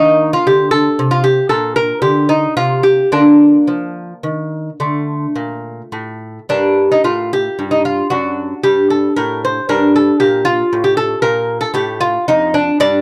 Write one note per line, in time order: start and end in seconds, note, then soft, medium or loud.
0.00 0.34 D#3 medium
0.00 3.07 A#3 medium
0.00 0.31 D#4 loud
0.33 0.46 F4 loud
0.47 0.87 D3 medium
0.47 0.70 G4 medium
0.71 1.07 A4 loud
0.99 1.39 C3 medium
1.11 1.23 F4 medium
1.24 1.48 G4 medium
1.49 1.92 A#2 medium
1.49 1.74 A4 medium
1.76 2.01 A#4 loud
2.02 2.45 D3 medium
2.02 2.28 G4 medium
2.29 2.55 D#4 medium
2.57 3.01 C3 medium
2.57 2.83 F4 medium
2.83 3.10 G4 medium
3.12 3.57 D3 medium
3.12 4.77 A#3 medium
3.12 5.61 D4 medium
3.67 4.12 F3 medium
4.23 4.69 D#3 medium
4.80 5.25 D3 medium
4.80 6.46 A3 soft
5.36 5.81 A#2 medium
5.92 6.38 A2 medium
6.49 6.94 G2 medium
6.49 8.08 A#3 medium
6.49 6.90 D4 medium
6.92 7.04 D#4 medium
7.04 7.48 A2 medium
7.04 7.31 F4 medium
7.33 7.71 G4 medium
7.59 8.01 G2 medium
7.71 7.85 D#4 medium
7.85 8.10 F4 medium
8.10 8.53 F#2 medium
8.10 9.65 D4 soft
8.10 8.61 F#4 medium
8.63 9.07 G2 medium
8.63 8.89 G4 medium
8.90 9.16 A4 medium
9.16 9.59 A2 medium
9.16 9.42 A#4 medium
9.45 9.69 C5 medium
9.69 10.10 G2 medium
9.69 12.53 D4 medium
9.69 9.94 A#4 loud
9.96 10.19 A4 medium
10.20 10.62 A#2 medium
10.20 10.45 G4 medium
10.45 10.83 F4 loud
10.73 11.14 A2 medium
10.84 10.97 G4 medium
10.97 11.22 A4 medium
11.22 11.65 A#2 medium
11.22 11.60 A#4 loud
11.61 11.74 A4 loud
11.74 12.17 A2 medium
11.74 12.01 G4 loud
12.01 12.27 F4 medium
12.28 12.70 F2 medium
12.28 12.53 D#4 medium
12.54 12.79 D4 loud
12.80 13.01 G2 medium
12.80 13.01 D4 medium
12.80 13.01 D5 loud